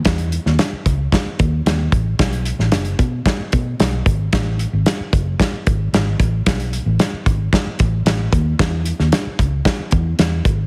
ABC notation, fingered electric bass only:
X:1
M:4/4
L:1/16
Q:1/4=112
K:Alyd
V:1 name="Fingered electric bass" clef=bass
E,,3 D,, z2 C,,2 z2 D,,2 D,,2 A,,,2 | B,,,3 A,,, z2 B,,2 z2 B,,2 B,,,2 G,,,2 | A,,,3 G,,, z2 F,,,2 z2 G,,,2 G,,,2 A,,,2 | B,,,3 A,,, z2 G,,,2 z2 A,,,2 A,,,2 D,,2 |
E,,3 D,, z2 C,,2 z2 E,,2 E,,2 G,,,2 |]